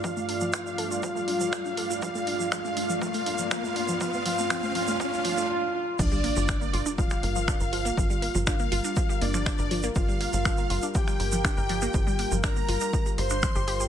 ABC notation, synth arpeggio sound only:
X:1
M:4/4
L:1/16
Q:1/4=121
K:Gm
V:1 name="Synth arpeggio sound"
F, A, D F, F D A F F, A, D F, F D A F | F, A, D F, F, A, D F, F, A, D F, F, A, D F, | F, A, F, A, F, A, F, A, F, A, F, A, z4 | [F,F] [G,G] [B,B] [F,F] [Dd] [B,B] [Ff] [Dd] [F,F] [G,G] [B,B] [F,F] [Dd] [Bb] [F,F] [B,B] |
[F,F] [G,G] [B,B] [F,F] [Dd] [B,B] [Ff] [Dd] [F,F] [G,G] [B,B] [F,F] [Dd] [Bb] [F,F] [B,B] | [F,F] [G,G] [B,B] [F,F] [Dd] [B,B] [Ff] [Dd] [F,F] [G,G] [B,B] [F,F] [Dd] [Bb] [F,F] [B,B] | [F,F] [G,G] [B,B] [F,F] [Dd] [B,B] [Ff] [Dd] [F,F] [G,G] [G,G] [Dd] [F,F] [Gg] [Gg] [Gg] |]